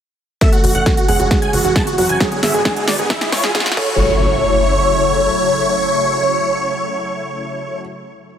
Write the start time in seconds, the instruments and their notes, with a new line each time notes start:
0.41 analog synth pad E3 C#4 F#4, felt piano A3 A4, supersaw synth E5, kick, snare, closed hi-hat, riser
0.52 supersaw synth F#4, closed hi-hat
0.64 analog synth bass F#1, supersaw synth F#4, open hi-hat
0.75 analog synth bass F#1, supersaw synth F#5, closed hi-hat
0.86 supersaw synth F#4, kick, snare, closed hi-hat
0.97 supersaw synth F#4, closed hi-hat
1.08 analog synth bass F#1, felt piano G#3 G#4, supersaw synth F#5, open hi-hat
1.20 analog synth bass F#1, supersaw synth F#4, closed hi-hat
1.31 supersaw synth F#4, kick, snare, closed hi-hat
1.42 supersaw synth G#5, closed hi-hat
1.53 analog synth bass F#1, supersaw synth F#4, open hi-hat
1.64 analog synth bass F#1, supersaw synth F#4, closed hi-hat
1.76 supersaw synth A5, kick, snare, closed hi-hat
1.87 supersaw synth F#4, closed hi-hat
1.98 analog synth bass F#1, felt piano F#3 F#4, supersaw synth F#4, open hi-hat
2.09 analog synth bass F#1, supersaw synth G#5, closed hi-hat
2.20 analog synth pad D3 G#3 B3, supersaw synth G#4, kick, snare, closed hi-hat
2.32 supersaw synth G#4, closed hi-hat
2.43 analog synth bass G#1, felt piano G#3 G#4, supersaw synth E5, snare, open hi-hat
2.54 analog synth bass G#1, supersaw synth G#4, closed hi-hat
2.65 supersaw synth G#4, kick, snare, closed hi-hat
2.76 supersaw synth G#4, closed hi-hat
2.88 analog synth bass G#1, supersaw synth D5, snare, open hi-hat
2.99 analog synth bass G#1, supersaw synth G#4, closed hi-hat
3.10 analog synth pad C#3 E3 G#3 E4, supersaw synth E5, kick, snare, closed hi-hat
3.21 supersaw synth G#4, snare, closed hi-hat
3.32 analog synth bass C#2, supersaw synth C#5, kick, snare, open hi-hat
3.43 analog synth bass C#2, supersaw synth G#4, snare, closed hi-hat
3.55 supersaw synth G#4, kick, snare, closed hi-hat
3.60 snare
3.66 snare, closed hi-hat
3.72 snare
3.77 analog synth bass F#1, analog synth pad C#3 F#3 A3 E4, felt piano A4, supersaw synth C#5, kick, crash, impact